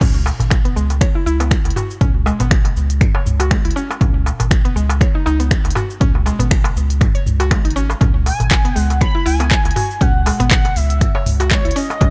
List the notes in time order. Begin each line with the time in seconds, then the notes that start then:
0.01 C#2 C#4, kick, closed hi-hat, mid tom, crash, darbuka tek, darbuka dum, cabasa
0.26 darbuka ka, cabasa
0.40 G#1, closed hi-hat, darbuka dum, cabasa
0.50 finger snap, kick, closed hi-hat, darbuka tek, cabasa
0.65 B3, closed hi-hat
0.76 C#2 G#3, cabasa
0.90 closed hi-hat, darbuka tek, cabasa
1.01 C#5, finger snap, kick, closed hi-hat, cabasa
1.15 E4
1.26 C#2 E4, cabasa
1.40 B3, closed hi-hat, darbuka tek, cabasa
1.51 finger snap, kick, closed hi-hat, cabasa
1.65 C#2, closed hi-hat, darbuka ka
1.71 closed hi-hat
1.76 F#4, mid tom, darbuka tek, cabasa
1.91 cabasa
2.01 C#2 C#4, kick, closed hi-hat, mid tom, darbuka dum, cabasa
2.26 G#3, darbuka ka, darbuka tek, cabasa
2.40 G#1 B3, closed hi-hat, darbuka dum, cabasa
2.51 finger snap, kick, closed hi-hat, cabasa
2.65 closed hi-hat, darbuka tek
2.76 C#2, cabasa
2.90 closed hi-hat, cabasa
3.01 finger snap, kick, closed hi-hat, mid tom, cabasa
3.15 C#5, darbuka tek
3.26 C#2, mid tom, cabasa
3.40 F#4, closed hi-hat, darbuka ka, cabasa
3.51 G#3, finger snap, kick, closed hi-hat, darbuka tek, cabasa
3.65 C#2 E4, closed hi-hat
3.71 closed hi-hat
3.76 C#4, cabasa
3.91 darbuka ka, cabasa
4.01 C#2 C#4, kick, closed hi-hat, mid tom, darbuka tek, darbuka dum, cabasa
4.26 darbuka ka, cabasa
4.40 G#1, closed hi-hat, darbuka tek, darbuka dum, cabasa
4.51 finger snap, kick, closed hi-hat, cabasa
4.65 B3, closed hi-hat
4.76 C#2 G#3, cabasa
4.89 closed hi-hat, darbuka tek, cabasa
5.01 C#5, finger snap, kick, closed hi-hat, cabasa
5.15 D#4
5.26 C#2 D#4, darbuka tek, cabasa
5.40 B3, closed hi-hat, cabasa
5.51 finger snap, kick, closed hi-hat, cabasa
5.65 C#2, closed hi-hat, darbuka ka
5.71 closed hi-hat
5.75 F#4, mid tom, darbuka tek, cabasa
5.90 cabasa
6.00 C#2 C#4, kick, closed hi-hat, mid tom, darbuka dum, cabasa
6.15 darbuka tek
6.26 G#3, closed hi-hat, darbuka ka, cabasa
6.39 G#1 B3, closed hi-hat, darbuka dum, cabasa
6.51 finger snap, kick, closed hi-hat, cabasa
6.64 closed hi-hat, darbuka tek
6.76 C#2, cabasa
6.90 closed hi-hat, cabasa
7.01 finger snap, kick, closed hi-hat, mid tom, darbuka tek, cabasa
7.15 C#5, closed hi-hat
7.26 C#2, mid tom, cabasa
7.40 F#4, closed hi-hat, darbuka ka, cabasa
7.51 G#3, finger snap, kick, closed hi-hat, darbuka tek, cabasa
7.65 G#1 D#4, closed hi-hat
7.71 closed hi-hat
7.76 C#4, cabasa
7.90 darbuka ka, darbuka tek, cabasa
8.01 C#2 C#4, kick, closed hi-hat, mid tom, darbuka tek, darbuka dum, cabasa
8.26 G#5, open hi-hat, darbuka ka, cabasa
8.40 G#1, closed hi-hat, darbuka dum, cabasa
8.51 finger snap, kick, clap, closed hi-hat, darbuka tek, cabasa
8.65 B3, closed hi-hat
8.76 C#2 G#3 F#5, open hi-hat, cabasa
8.90 closed hi-hat, darbuka tek, cabasa
9.01 C#5 B5, finger snap, kick, closed hi-hat, cabasa
9.15 E4
9.26 C#2 E4 G#5, open hi-hat, cabasa
9.40 B3, closed hi-hat, darbuka tek, cabasa
9.51 finger snap, kick, clap, closed hi-hat, cabasa
9.65 C#2, closed hi-hat, darbuka ka
9.71 closed hi-hat
9.76 F#4, mid tom, open hi-hat, darbuka tek, cabasa
9.91 cabasa
10.01 C#2 C#4 F#5, kick, closed hi-hat, mid tom, darbuka dum, cabasa
10.26 G#3, open hi-hat, darbuka ka, darbuka tek, cabasa
10.40 G#1 B3, closed hi-hat, darbuka dum, cabasa
10.51 F#5, finger snap, kick, clap, closed hi-hat, cabasa
10.65 closed hi-hat, darbuka tek
10.76 C#2 E5, open hi-hat, cabasa
10.90 closed hi-hat, cabasa
11.01 finger snap, kick, closed hi-hat, mid tom, cabasa
11.15 C#5, darbuka tek
11.26 C#2, mid tom, open hi-hat, cabasa
11.40 F#4, closed hi-hat, darbuka ka, cabasa
11.51 G#3 C#5, finger snap, kick, clap, closed hi-hat, darbuka tek, cabasa
11.65 C#2 E4, closed hi-hat
11.71 closed hi-hat
11.76 C#4 D#5, open hi-hat, cabasa
11.90 darbuka ka, cabasa
12.01 C#2 C#4, kick, closed hi-hat, mid tom, darbuka tek, darbuka dum, cabasa